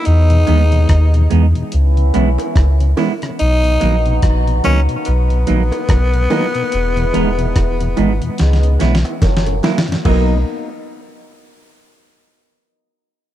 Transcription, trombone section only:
X:1
M:4/4
L:1/8
Q:"Swing 16ths" 1/4=72
K:B
V:1 name="Trombone section"
[G,B,D]3 z [B,CE]3 z | [B,DF]6- [B,DF] z | [G,B,E]3 z [G,B,D] z [F,A,C] z | [B,,A,D] z6 z |]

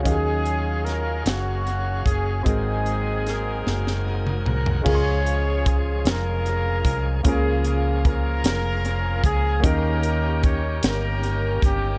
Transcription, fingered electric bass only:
X:1
M:6/8
L:1/8
Q:3/8=50
K:Db
V:1 name="Fingered electric bass" clef=bass
E,,3 G,,,2 G,,, | A,,,3 G,,,2 C,, | D,,3 F,,,2 C,, | D,,3 F,,,2 D,, |
E,,3 =G,,,2 G,,, |]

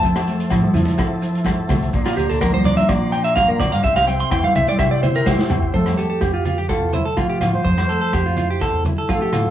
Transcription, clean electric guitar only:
X:1
M:4/4
L:1/16
Q:1/4=126
K:F
V:1 name="Clean electric guitar"
a8- a z6 z | z F G A B c d e d2 g e f B d f | e f g c' g f e d e d c B c2 z2 | c2 A A G F F G A2 c A F G F2 |
c2 A A G F F G A2 z A F G F2 |]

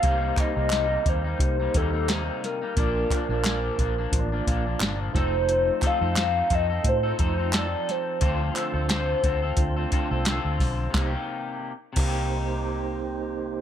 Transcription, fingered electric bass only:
X:1
M:4/4
L:1/16
Q:"Swing 16ths" 1/4=88
K:Cdor
V:1 name="Fingered electric bass" clef=bass
C,,2 z C,,3 E,,2 C,,2 E,,4 z2 | B,,,2 z B,,,3 B,,,2 A,,,2 B,,,2 G,,,2 F,,,2- | F,,,2 z F,,3 F,,2 A,,2 F,,4 z2 | D,,2 z D,,3 D,,2 D,,2 z C,,2 D,, =B,,,2 |
C,, z4 z C,,8- C,,2 |]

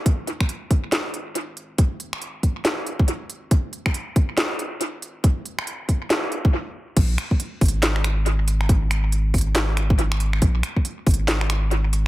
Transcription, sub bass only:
X:1
M:4/4
L:1/8
Q:"Swing 16ths" 1/4=139
K:Ab
V:1 name="Sub bass" clef=bass
B,,, z2 A,,,4- A,,,- | A,,,3 A,,,4- A,,, | B,,, z2 A,,,4- A,,,- | A,,,3 A,,,3 z2 |
B,,, z2 A,,,4- A,,,- | A,,,3 A,,,4- A,,, | B,,, z2 A,,,4- A,,, |]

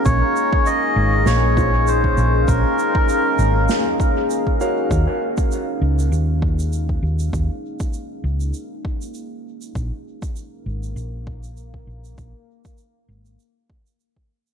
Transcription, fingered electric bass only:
X:1
M:4/4
L:1/8
Q:"Swing 16ths" 1/4=99
K:Bbm
V:1 name="Fingered electric bass" clef=bass
B,,, z2 A,,, B,,,3 B,,, | B,,, z2 A,,, z4 | E,, z2 D,, E,,3 E,, | E,, z2 D,, z4 |
B,,, z2 A,,, B,,,3 B,,, | B,,, z2 A,,, z4 |]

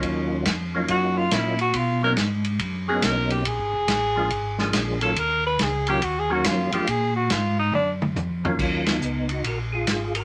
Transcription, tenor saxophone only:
X:1
M:4/4
L:1/16
Q:"Swing" 1/4=140
K:Ebm
V:1 name="Tenor saxophone"
D3 z4 z G2 F2 _F2 G2 | F2 ^A2 z6 _A2 ^A2 =G2 | A12 z2 =A2 | B2 c2 A2 =G2 (3_G2 A2 G2 F2 =G2 |
A2 G2 F2 E2 =D2 z6 | z16 |]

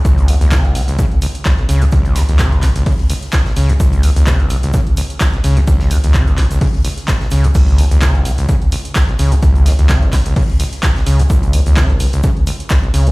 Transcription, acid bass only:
X:1
M:4/4
L:1/16
Q:"Swing 16ths" 1/4=128
K:C#m
V:1 name="Acid bass" clef=bass
C,,2 E,, D,, C, B,,, C,, C,, C, z C,, z B,,, B,,, C, C,, | C,,2 E,, D,, C, B,,, C,, C,, C, z C,, z B,,, B,,, C, C,, | C,,2 E,, D,, C, B,,, C,, C,, C, z C,, z B,,, B,,, C, C,, | C,,2 E,, D,, C, B,,, C,, C,, C, z C,, z B,,, B,,, C, C,, |
C,,2 E,, D,, C, B,,, C,, C,, C, z C,, z B,,, B,,, C, C,, | C,,2 E,, D,, C, B,,, C,, C,, C, z C,, z B,,, B,,, C, C,, | C,,2 E,, D,, C, B,,, C,, C,, C, z C,, z B,,, B,,, C, C,, |]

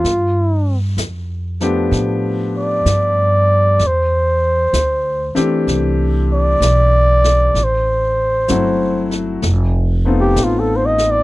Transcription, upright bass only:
X:1
M:4/4
L:1/8
Q:"Swing" 1/4=64
K:G
V:1 name="Upright bass" clef=bass
G,,2 =F,,2 A,,2 G,,2 | E,,2 D,, z C,,2 B,,,2 | A,,,2 G,,,2 =F,,,2 A,,,2 |]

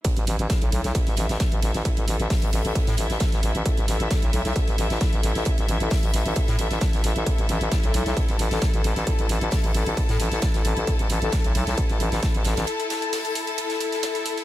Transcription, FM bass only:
X:1
M:4/4
L:1/16
Q:1/4=133
K:C
V:1 name="FM bass" clef=bass
z A,,, A,,, A,,, z B,,, B,,, B,,, z A,,, A,,, A,,, z A,,, A,,, A,,, | z A,,, A,,, A,,, z A,,, A,,, A,,, z A,, A,,, A,,, z A,,, A,,, A,,, | z A,,, A,,, A,,, z B,,, B,,, B,,, z A,,, A,,, A,,, z A,,, A,,, A,,, | z A,,, A,,, A,,, z A,,, A,,, A,,, z A,, A,,, A,,, z A,,, A,,, A,,, |
z A,,, A,,, A,,, z B,,, B,,, B,,, z A,,, A,,, A,,, z A,,, A,,, A,,, | z A,,, A,,, A,,, z A,,, A,,, A,,, z A,, A,,, A,,, z A,,, A,,, A,,, | z A,,, A,,, A,,, z B,,, B,,, B,,, z A,,, A,,, A,,, z A,,, A,,, A,,, | z16 |]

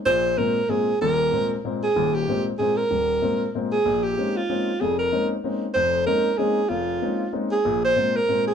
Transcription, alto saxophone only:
X:1
M:3/4
L:1/8
Q:"Swing" 1/4=190
K:Ab
V:1 name="Alto saxophone"
c2 B2 A2 | B4 z A- | A G2 z A B- | B4 z A- |
A G2 F3 | A B2 z3 | c2 B2 A2 | F4 z A- |
A c2 B2 A |]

